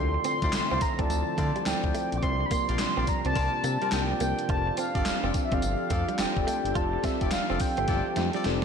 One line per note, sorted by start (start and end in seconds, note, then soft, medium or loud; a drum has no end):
0.00 0.18 D2 medium
0.00 2.21 D3 medium
0.00 4.45 F3 loud
0.00 2.20 A3 medium
0.00 0.73 C4 medium
0.00 2.20 C4 medium
0.00 0.10 D4 medium
0.00 0.73 E4 medium
0.00 0.73 F4 medium
0.00 0.73 A4 medium
0.00 0.73 D5 medium
0.00 2.20 E5 medium
0.00 0.25 C6 loud
0.14 muted clean electric guitar stroke soft
0.24 0.38 C4 medium
0.24 0.83 C6 loud
0.24 closed hi-hat medium
0.24 tambourine medium
0.42 0.51 D2 medium
0.42 0.53 E4 medium
0.42 0.53 F4 medium
0.42 0.53 C5 medium
0.42 0.53 D5 medium
0.42 kick loud
0.42 closed hi-hat medium
0.53 0.61 C2 medium
0.53 snare loud
0.53 clap loud
0.53 closed hi-hat medium
0.53 tambourine loud
0.71 0.79 C2 medium
0.71 0.79 C4 medium
0.71 0.81 E4 medium
0.71 0.81 F4 medium
0.71 0.81 C5 medium
0.71 0.81 D5 medium
0.81 1.01 A#5 loud
0.81 muted clean electric guitar stroke soft
0.81 kick loud
0.81 closed hi-hat medium
0.81 tambourine medium
0.99 1.07 D2 medium
0.99 1.07 C4 medium
0.99 1.51 C4 medium
0.99 1.51 E4 medium
0.99 1.51 F4 medium
0.99 1.51 A4 medium
0.99 1.51 D5 loud
0.99 1.68 A5 loud
0.99 kick loud
0.99 closed hi-hat soft
1.10 1.23 D2 loud
1.10 muted clean electric guitar stroke soft
1.10 closed hi-hat medium
1.10 tambourine medium
1.37 1.52 D3 loud
1.37 1.52 A3 medium
1.37 1.55 E4 medium
1.37 1.55 F4 medium
1.37 1.55 C5 medium
1.37 1.55 D5 medium
1.37 kick loud
1.37 closed hi-hat medium
1.37 tambourine medium
1.56 1.64 G3 medium
1.56 closed hi-hat soft
1.66 1.74 D2 soft
1.66 1.79 C4 medium
1.66 1.79 E4 medium
1.66 1.80 F4 medium
1.66 1.80 A4 medium
1.66 1.80 D5 loud
1.66 2.17 G5 loud
1.66 snare loud
1.66 clap medium
1.66 closed hi-hat medium
1.66 tambourine loud
1.84 1.92 D2 medium
1.84 2.15 C4 medium
1.84 2.15 E4 medium
1.84 2.15 F4 medium
1.84 2.15 A4 medium
1.84 2.15 D5 medium
1.84 kick loud
1.95 2.08 A3 medium
1.95 closed hi-hat medium
1.95 tambourine medium
2.12 2.20 A#1 medium
2.12 closed hi-hat medium
2.18 2.24 D6 medium
2.22 2.44 C2 loud
2.22 4.47 C3 medium
2.22 4.47 G3 medium
2.22 4.47 A#3 medium
2.22 2.99 C4 medium
2.22 2.36 C4 medium
2.22 8.65 D4 medium
2.22 2.99 F4 medium
2.22 2.99 G4 medium
2.22 3.00 A#4 medium
2.22 3.00 D5 medium
2.22 2.45 C6 loud
2.22 kick loud
2.22 closed hi-hat medium
2.41 muted clean electric guitar stroke soft
2.46 2.53 B5 medium
2.51 2.65 A#3 medium
2.51 3.10 C6 loud
2.51 kick medium
2.51 closed hi-hat medium
2.51 tambourine medium
2.68 2.77 A#1 loud
2.68 2.79 F4 medium
2.68 2.79 A#4 medium
2.68 2.79 C5 medium
2.68 2.79 D5 medium
2.68 closed hi-hat medium
2.79 2.87 A#1 soft
2.79 snare loud
2.79 clap loud
2.79 closed hi-hat medium
2.79 tambourine medium
2.96 3.05 A#1 medium
2.96 3.05 C4 medium
2.96 3.07 F4 medium
2.96 3.07 A#4 medium
2.96 3.07 C5 medium
2.96 3.07 D5 medium
3.07 3.26 A#5 loud
3.07 muted clean electric guitar stroke medium
3.07 kick loud
3.07 closed hi-hat medium
3.07 tambourine medium
3.25 3.33 C2 loud
3.25 3.77 C4 medium
3.25 3.34 C4 medium
3.25 3.77 F4 medium
3.25 3.77 G4 medium
3.25 3.77 A#4 medium
3.25 3.77 D5 loud
3.25 3.95 A5 loud
3.25 closed hi-hat medium
3.35 3.49 C2 loud
3.35 3.53 F4 medium
3.35 3.53 A#4 medium
3.35 3.53 C5 medium
3.35 3.53 D5 medium
3.35 muted clean electric guitar stroke soft
3.35 kick loud
3.35 closed hi-hat medium
3.35 tambourine medium
3.64 3.77 C3 loud
3.64 3.78 A#3 medium
3.64 closed hi-hat medium
3.64 tambourine medium
3.82 3.90 G3 medium
3.82 3.92 F4 medium
3.82 3.92 A#4 medium
3.82 3.92 C5 medium
3.82 3.92 D5 medium
3.82 closed hi-hat soft
3.92 4.14 C2 medium
3.92 4.06 C4 medium
3.92 4.06 F4 medium
3.92 4.06 G4 medium
3.92 4.06 A#4 medium
3.92 4.06 D5 loud
3.92 4.21 G5 loud
3.92 snare loud
3.92 clap medium
3.92 closed hi-hat medium
3.92 tambourine medium
4.10 4.41 C4 medium
4.10 4.41 F4 medium
4.10 4.41 G4 medium
4.10 4.41 A#4 medium
4.10 4.42 D5 medium
4.20 4.34 C2 medium
4.20 4.34 A#3 medium
4.20 4.48 G5 loud
4.20 closed hi-hat medium
4.20 tambourine medium
4.39 closed hi-hat medium
4.49 4.71 F1 loud
4.49 8.65 F3 medium
4.49 5.26 C4 medium
4.49 8.65 C4 medium
4.49 5.26 F4 medium
4.49 4.63 F4 medium
4.49 8.65 G4 medium
4.49 5.26 G4 medium
4.49 8.65 A4 loud
4.49 5.26 A4 medium
4.49 5.26 D5 medium
4.49 4.76 A5 loud
4.49 kick loud
4.49 closed hi-hat medium
4.67 muted clean electric guitar stroke soft
4.77 4.91 C4 medium
4.77 5.40 F5 loud
4.77 closed hi-hat medium
4.77 tambourine medium
4.95 5.03 G1 medium
4.95 5.05 F4 medium
4.95 5.05 G4 medium
4.95 5.06 A4 medium
4.95 5.06 D5 medium
4.95 kick loud
4.95 closed hi-hat medium
5.05 5.13 F1 medium
5.05 snare loud
5.05 clap loud
5.05 closed hi-hat medium
5.05 tambourine medium
5.23 5.31 F1 medium
5.23 5.32 C4 medium
5.23 5.34 F4 medium
5.23 5.34 G4 medium
5.23 5.34 A4 medium
5.23 5.34 D5 medium
5.34 muted clean electric guitar stroke soft
5.34 kick loud
5.34 closed hi-hat medium
5.34 tambourine medium
5.44 5.55 E5 medium
5.52 5.60 G1 medium
5.52 6.03 C4 medium
5.52 5.60 C4 medium
5.52 6.04 F4 medium
5.52 6.04 G4 medium
5.52 6.04 A4 medium
5.52 6.04 D5 loud
5.52 6.22 F5 medium
5.52 kick loud
5.52 closed hi-hat soft
5.62 5.76 G1 medium
5.62 muted clean electric guitar stroke soft
5.62 closed hi-hat medium
5.62 tambourine medium
5.90 6.04 F2 loud
5.90 6.04 A3 medium
5.90 6.08 F4 medium
5.90 6.08 G4 medium
5.90 6.08 A4 medium
5.90 6.08 D5 medium
5.90 kick loud
5.90 closed hi-hat medium
5.90 tambourine medium
6.09 6.17 G3 medium
6.09 closed hi-hat medium
6.18 6.26 F1 soft
6.18 6.32 C4 medium
6.18 6.32 F4 medium
6.18 6.32 G4 medium
6.18 6.32 A4 medium
6.18 6.32 D5 loud
6.18 6.78 G5 loud
6.18 snare loud
6.18 clap medium
6.18 closed hi-hat medium
6.18 tambourine medium
6.37 6.45 F1 medium
6.37 6.68 C4 medium
6.37 6.68 F4 medium
6.37 6.68 G4 medium
6.37 6.68 A4 medium
6.37 6.68 D5 medium
6.37 kick medium
6.47 6.61 A3 medium
6.47 closed hi-hat medium
6.47 tambourine medium
6.65 6.73 G1 medium
6.65 closed hi-hat medium
6.75 6.97 F1 loud
6.75 7.52 C4 medium
6.75 6.89 F4 medium
6.75 7.52 F4 medium
6.75 7.52 G4 medium
6.75 7.52 A4 medium
6.75 7.53 D5 medium
6.75 7.06 A5 loud
6.75 kick loud
6.75 closed hi-hat medium
6.93 muted clean electric guitar stroke soft
7.03 7.17 C4 medium
7.03 7.31 E5 medium
7.03 kick medium
7.03 snare medium
7.03 closed hi-hat medium
7.03 tambourine medium
7.21 7.30 F1 loud
7.21 7.32 F4 medium
7.21 7.32 G4 medium
7.21 7.32 A4 medium
7.21 7.32 D5 medium
7.21 kick loud
7.21 closed hi-hat medium
7.31 7.39 F1 medium
7.31 7.62 F5 medium
7.31 snare loud
7.31 clap medium
7.31 closed hi-hat medium
7.31 tambourine medium
7.49 7.58 F1 loud
7.49 7.58 C4 medium
7.49 7.60 F4 medium
7.49 7.60 G4 medium
7.49 7.60 A4 medium
7.49 7.60 D5 medium
7.59 8.65 G5 loud
7.59 muted clean electric guitar stroke soft
7.59 kick loud
7.59 open hi-hat medium
7.59 tambourine medium
7.77 7.86 G1 medium
7.77 8.29 C4 medium
7.77 7.86 C4 medium
7.77 8.29 F4 medium
7.77 8.30 G4 medium
7.77 8.30 A4 medium
7.77 8.30 E5 loud
7.77 closed hi-hat soft
7.88 8.02 G1 medium
7.88 8.06 F4 medium
7.88 8.06 G4 medium
7.88 8.06 A4 medium
7.88 8.06 D5 medium
7.88 muted clean electric guitar stroke soft
7.88 kick medium
7.88 snare medium
7.88 closed hi-hat medium
8.16 8.31 F2 loud
8.16 8.31 A3 medium
8.16 snare medium
8.16 closed hi-hat medium
8.33 8.43 G3 medium
8.33 8.45 F4 medium
8.33 8.45 G4 medium
8.33 8.45 A4 medium
8.33 8.45 D5 medium
8.33 closed hi-hat soft
8.44 8.65 F1 medium
8.44 8.58 C4 loud
8.44 8.58 F4 loud
8.44 8.59 G4 medium
8.44 8.59 A4 loud
8.44 8.59 D5 loud
8.44 snare loud
8.44 closed hi-hat medium